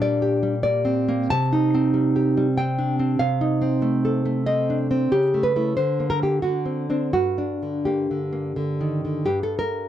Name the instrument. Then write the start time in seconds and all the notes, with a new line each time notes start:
nylon-string guitar
Already playing: A#2 A#3 D4
0.02 G3 D5
0.22 G4
0.43 G3
0.63 A#3 D5
0.85 C4
1.08 A#3
1.30 C3 A5
1.53 D#4
1.75 C4
1.94 G3
2.16 G4
2.37 G3
2.58 C4 G5
2.79 D4
2.99 C4
3.19 C3 F5
3.41 D#4
3.62 C4
3.82 A3
4.05 A4
4.25 A3
4.46 C4 D#5
4.70 D4
4.91 C4
5.12 C#3 G4
5.34 A3
5.43 B4
5.56 A3 E4
5.77 D3 C5
6.00 A#3
6.10 A#4
6.22 A#3 G4
6.42 D3 F#4
6.66 C4
6.90 C4 D4
7.13 G2 F#4
7.38 D4
7.63 D3
7.85 A#3 G4
8.11 D3
8.33 A#3
8.56 D3
8.81 D#3
9.05 D3
9.26 G2 G4
9.43 A4
9.59 A#4